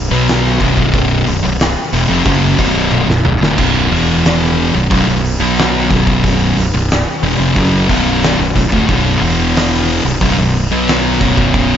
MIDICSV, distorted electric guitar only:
0, 0, Header, 1, 2, 480
1, 0, Start_track
1, 0, Tempo, 662252
1, 682, Time_signature, 4, 2, 24, 8
1, 8531, End_track
2, 0, Start_track
2, 0, Title_t, "Distorted electric guitar"
2, 0, Program_c, 0, 30
2, 79, Note_on_c, 0, 47, 102
2, 83, Note_on_c, 0, 54, 107
2, 83, Note_on_c, 0, 59, 110
2, 433, Note_off_c, 0, 47, 0
2, 435, Note_off_c, 0, 54, 0
2, 436, Note_off_c, 0, 59, 0
2, 441, Note_on_c, 0, 35, 95
2, 446, Note_on_c, 0, 42, 111
2, 447, Note_on_c, 0, 47, 105
2, 911, Note_off_c, 0, 35, 0
2, 916, Note_off_c, 0, 42, 0
2, 917, Note_off_c, 0, 47, 0
2, 919, Note_on_c, 0, 35, 62
2, 924, Note_on_c, 0, 42, 74
2, 1028, Note_off_c, 0, 35, 0
2, 1033, Note_off_c, 0, 42, 0
2, 1037, Note_on_c, 0, 35, 65
2, 1042, Note_on_c, 0, 42, 76
2, 1231, Note_off_c, 0, 35, 0
2, 1233, Note_off_c, 0, 42, 0
2, 1399, Note_on_c, 0, 40, 94
2, 1404, Note_on_c, 0, 47, 102
2, 1512, Note_off_c, 0, 40, 0
2, 1515, Note_off_c, 0, 47, 0
2, 1517, Note_on_c, 0, 41, 98
2, 1521, Note_on_c, 0, 48, 111
2, 1632, Note_off_c, 0, 41, 0
2, 1633, Note_off_c, 0, 48, 0
2, 1636, Note_on_c, 0, 42, 102
2, 1637, Note_on_c, 0, 49, 107
2, 1642, Note_on_c, 0, 54, 107
2, 1868, Note_off_c, 0, 42, 0
2, 1871, Note_off_c, 0, 49, 0
2, 1874, Note_off_c, 0, 54, 0
2, 1875, Note_on_c, 0, 35, 94
2, 1877, Note_on_c, 0, 42, 99
2, 1878, Note_on_c, 0, 47, 99
2, 2225, Note_off_c, 0, 35, 0
2, 2228, Note_off_c, 0, 42, 0
2, 2232, Note_off_c, 0, 47, 0
2, 2234, Note_on_c, 0, 35, 68
2, 2236, Note_on_c, 0, 42, 77
2, 2348, Note_off_c, 0, 35, 0
2, 2350, Note_off_c, 0, 42, 0
2, 2357, Note_on_c, 0, 35, 72
2, 2358, Note_on_c, 0, 42, 80
2, 2470, Note_off_c, 0, 35, 0
2, 2473, Note_on_c, 0, 38, 88
2, 2475, Note_off_c, 0, 42, 0
2, 2478, Note_on_c, 0, 45, 113
2, 2589, Note_off_c, 0, 38, 0
2, 2592, Note_off_c, 0, 45, 0
2, 2597, Note_on_c, 0, 35, 83
2, 2601, Note_on_c, 0, 42, 110
2, 2601, Note_on_c, 0, 47, 118
2, 2829, Note_off_c, 0, 47, 0
2, 2831, Note_off_c, 0, 35, 0
2, 2833, Note_off_c, 0, 42, 0
2, 2834, Note_on_c, 0, 40, 92
2, 2838, Note_on_c, 0, 47, 94
2, 2841, Note_on_c, 0, 52, 107
2, 3429, Note_off_c, 0, 40, 0
2, 3431, Note_off_c, 0, 47, 0
2, 3433, Note_off_c, 0, 52, 0
2, 3436, Note_on_c, 0, 35, 66
2, 3439, Note_on_c, 0, 42, 73
2, 3544, Note_off_c, 0, 35, 0
2, 3548, Note_off_c, 0, 42, 0
2, 3553, Note_on_c, 0, 35, 106
2, 3557, Note_on_c, 0, 42, 111
2, 3668, Note_off_c, 0, 35, 0
2, 3671, Note_off_c, 0, 42, 0
2, 3676, Note_on_c, 0, 35, 67
2, 3679, Note_on_c, 0, 42, 79
2, 3870, Note_off_c, 0, 35, 0
2, 3871, Note_off_c, 0, 42, 0
2, 3913, Note_on_c, 0, 47, 90
2, 3918, Note_on_c, 0, 54, 106
2, 3920, Note_on_c, 0, 59, 107
2, 4269, Note_off_c, 0, 47, 0
2, 4271, Note_off_c, 0, 54, 0
2, 4272, Note_off_c, 0, 59, 0
2, 4276, Note_on_c, 0, 35, 105
2, 4279, Note_on_c, 0, 42, 106
2, 4281, Note_on_c, 0, 47, 111
2, 4751, Note_off_c, 0, 35, 0
2, 4752, Note_off_c, 0, 42, 0
2, 4753, Note_off_c, 0, 47, 0
2, 4762, Note_on_c, 0, 35, 67
2, 4765, Note_on_c, 0, 42, 73
2, 4872, Note_off_c, 0, 35, 0
2, 4873, Note_off_c, 0, 42, 0
2, 4880, Note_on_c, 0, 35, 74
2, 4882, Note_on_c, 0, 42, 72
2, 5072, Note_off_c, 0, 35, 0
2, 5073, Note_off_c, 0, 42, 0
2, 5237, Note_on_c, 0, 40, 100
2, 5243, Note_on_c, 0, 47, 118
2, 5351, Note_off_c, 0, 40, 0
2, 5354, Note_off_c, 0, 47, 0
2, 5356, Note_on_c, 0, 41, 100
2, 5359, Note_on_c, 0, 48, 122
2, 5471, Note_off_c, 0, 41, 0
2, 5472, Note_off_c, 0, 48, 0
2, 5474, Note_on_c, 0, 42, 101
2, 5477, Note_on_c, 0, 49, 109
2, 5481, Note_on_c, 0, 54, 121
2, 5710, Note_off_c, 0, 42, 0
2, 5712, Note_off_c, 0, 49, 0
2, 5713, Note_on_c, 0, 35, 99
2, 5714, Note_off_c, 0, 54, 0
2, 5718, Note_on_c, 0, 42, 96
2, 5721, Note_on_c, 0, 47, 105
2, 6070, Note_off_c, 0, 35, 0
2, 6073, Note_off_c, 0, 42, 0
2, 6074, Note_off_c, 0, 47, 0
2, 6078, Note_on_c, 0, 35, 81
2, 6080, Note_on_c, 0, 42, 77
2, 6190, Note_off_c, 0, 35, 0
2, 6192, Note_off_c, 0, 42, 0
2, 6199, Note_on_c, 0, 35, 65
2, 6201, Note_on_c, 0, 42, 79
2, 6316, Note_off_c, 0, 35, 0
2, 6319, Note_off_c, 0, 42, 0
2, 6319, Note_on_c, 0, 38, 97
2, 6322, Note_on_c, 0, 45, 98
2, 6433, Note_off_c, 0, 38, 0
2, 6434, Note_off_c, 0, 45, 0
2, 6444, Note_on_c, 0, 35, 101
2, 6448, Note_on_c, 0, 42, 99
2, 6450, Note_on_c, 0, 47, 115
2, 6675, Note_off_c, 0, 47, 0
2, 6676, Note_off_c, 0, 35, 0
2, 6678, Note_off_c, 0, 42, 0
2, 6679, Note_on_c, 0, 40, 97
2, 6683, Note_on_c, 0, 47, 93
2, 6688, Note_on_c, 0, 52, 100
2, 7274, Note_off_c, 0, 40, 0
2, 7276, Note_off_c, 0, 47, 0
2, 7278, Note_off_c, 0, 52, 0
2, 7282, Note_on_c, 0, 35, 76
2, 7288, Note_on_c, 0, 42, 77
2, 7394, Note_off_c, 0, 35, 0
2, 7399, Note_off_c, 0, 42, 0
2, 7403, Note_on_c, 0, 35, 95
2, 7408, Note_on_c, 0, 42, 114
2, 7516, Note_off_c, 0, 35, 0
2, 7518, Note_off_c, 0, 42, 0
2, 7528, Note_on_c, 0, 35, 69
2, 7529, Note_on_c, 0, 42, 70
2, 7718, Note_off_c, 0, 35, 0
2, 7718, Note_off_c, 0, 42, 0
2, 7766, Note_on_c, 0, 47, 109
2, 7768, Note_on_c, 0, 54, 98
2, 7772, Note_on_c, 0, 59, 103
2, 8118, Note_off_c, 0, 47, 0
2, 8119, Note_off_c, 0, 54, 0
2, 8121, Note_off_c, 0, 59, 0
2, 8121, Note_on_c, 0, 35, 100
2, 8124, Note_on_c, 0, 42, 92
2, 8128, Note_on_c, 0, 47, 108
2, 8531, Note_off_c, 0, 35, 0
2, 8531, Note_off_c, 0, 42, 0
2, 8531, Note_off_c, 0, 47, 0
2, 8531, End_track
0, 0, End_of_file